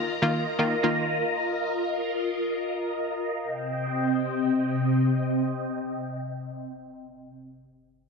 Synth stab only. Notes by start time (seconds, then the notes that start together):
0.22 D#3 A#3 F4
0.59 D#3 A#3 F4
0.83 D#3 A#3 F4